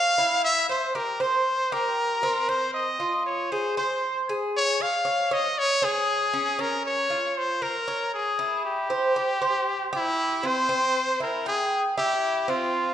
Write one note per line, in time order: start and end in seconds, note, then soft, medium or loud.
0.00 0.17 C#5 medium
0.00 0.44 F5 loud
0.18 0.68 E4 medium
0.44 0.68 E5 loud
0.69 0.95 C5 medium
0.69 0.97 C5 medium
0.95 1.20 G4 medium
0.95 1.23 A#4 medium
1.20 1.70 C5 medium
1.20 1.74 C5 medium
1.72 2.22 G4 medium
1.72 2.51 A#4 medium
2.23 2.47 C4 medium
2.49 2.99 C4 medium
2.49 2.74 C5 loud
2.74 3.22 D#5 medium
3.00 3.50 F4 medium
3.26 3.53 C#5 medium
3.52 3.77 G#4 medium
3.52 3.77 C5 medium
3.77 4.27 C5 medium
3.77 4.24 C5 medium
4.29 4.79 G#4 medium
4.57 4.83 C#5 loud
4.80 5.04 C#5 medium
4.80 5.35 F5 loud
5.05 5.30 C#5 medium
5.31 5.81 C#5 medium
5.31 5.60 D#5 loud
5.59 5.86 C#5 loud
5.82 6.62 G#4 medium
5.82 6.32 C#5 medium
6.34 6.58 C#4 medium
6.59 7.09 C#4 medium
6.59 6.85 A#4 loud
6.86 7.40 C#5 loud
7.10 7.60 F4 medium
7.38 7.64 C5 medium
7.62 7.87 A#4 medium
7.62 8.14 A#4 loud
7.88 8.37 C#5 medium
8.14 8.61 G#4 medium
8.39 8.88 E4 medium
8.65 9.89 G4 medium
8.90 9.15 C5 medium
9.16 9.41 G4 medium
9.42 9.91 C5 medium
9.93 10.48 E4 loud
9.93 10.42 G4 medium
10.43 10.68 C4 medium
10.43 11.22 C5 loud
10.69 11.19 C4 medium
11.20 11.45 E4 medium
11.20 11.45 A#4 medium
11.46 11.84 G#4 medium
11.46 11.96 G5 medium
11.98 12.47 E4 medium
11.98 12.51 G4 loud
12.48 12.94 C4 medium
12.48 12.94 F4 medium